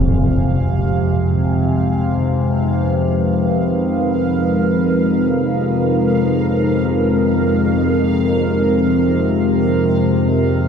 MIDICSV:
0, 0, Header, 1, 4, 480
1, 0, Start_track
1, 0, Tempo, 500000
1, 10255, End_track
2, 0, Start_track
2, 0, Title_t, "Synth texture"
2, 0, Program_c, 0, 99
2, 0, Note_on_c, 0, 77, 74
2, 10255, Note_off_c, 0, 77, 0
2, 10255, End_track
3, 0, Start_track
3, 0, Title_t, "Analog synth pad"
3, 0, Program_c, 1, 89
3, 0, Note_on_c, 1, 56, 84
3, 0, Note_on_c, 1, 65, 75
3, 0, Note_on_c, 1, 79, 69
3, 0, Note_on_c, 1, 80, 75
3, 477, Note_on_c, 1, 63, 70
3, 1311, Note_off_c, 1, 65, 0
3, 1577, Note_on_c, 1, 71, 66
3, 2171, Note_off_c, 1, 79, 0
3, 2711, Note_off_c, 1, 80, 0
3, 2716, Note_on_c, 1, 70, 84
3, 10255, Note_off_c, 1, 56, 0
3, 10255, Note_off_c, 1, 63, 0
3, 10255, Note_off_c, 1, 70, 0
3, 10255, Note_off_c, 1, 71, 0
3, 10255, End_track
4, 0, Start_track
4, 0, Title_t, "Synth drone"
4, 0, Program_c, 2, 95
4, 0, Note_on_c, 2, 41, 67
4, 0, Note_on_c, 2, 48, 71
4, 10255, Note_off_c, 2, 41, 0
4, 10255, Note_off_c, 2, 48, 0
4, 10255, End_track
0, 0, End_of_file